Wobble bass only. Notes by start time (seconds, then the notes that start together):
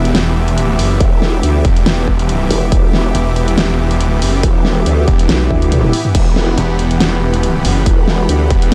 1.00 E1
1.43 D2
2.51 E1
2.72 E1
4.43 E1
4.86 D2
5.29 B1
5.51 D2
6.15 E1
7.86 E1
8.29 D2